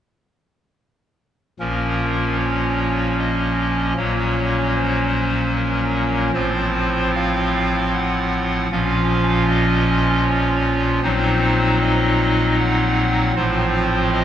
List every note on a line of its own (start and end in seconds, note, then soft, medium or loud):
1.59 3.93 A#1 medium
1.59 3.93 A#2 medium
1.59 3.93 F3 soft
1.59 3.93 A#3 soft
1.59 3.93 C#4 soft
1.59 2.37 A#4 medium
2.39 3.16 C#5 medium
3.19 3.95 D#5 medium
3.97 6.30 A#1 medium
3.97 6.30 A#2 soft
3.97 6.30 F#3 soft
3.97 6.30 A#3 soft
3.97 6.30 C#4 soft
3.97 4.74 C#5 medium
4.76 5.53 C5 medium
5.55 6.32 A#4 medium
6.33 8.67 A1 medium
6.33 8.67 A2 medium
6.33 8.67 F3 soft
6.33 8.67 C4 medium
6.33 8.67 F4 soft
6.33 7.13 C5 loud
7.15 7.91 F5 loud
7.93 8.69 F#5 medium
8.71 11.00 A#1 medium
8.71 11.00 A#2 medium
8.71 11.00 F3 medium
8.71 11.00 C#4 medium
8.71 11.00 F4 medium
8.71 9.46 F5 loud
9.48 10.24 D#5 loud
10.25 11.01 C#5 medium
11.03 13.32 A#1 medium
11.03 13.32 A#2 medium
11.03 13.32 F#3 medium
11.03 13.32 C4 medium
11.03 13.32 D#4 medium
11.03 11.79 C5 loud
11.81 12.56 D#5 loud
12.59 13.34 F#5 loud
13.36 14.24 A1 medium
13.36 14.24 A2 medium
13.36 14.24 F3 medium
13.36 14.24 C4 medium
13.36 14.24 F4 medium
13.36 14.11 C5 loud
14.12 14.24 D#5 loud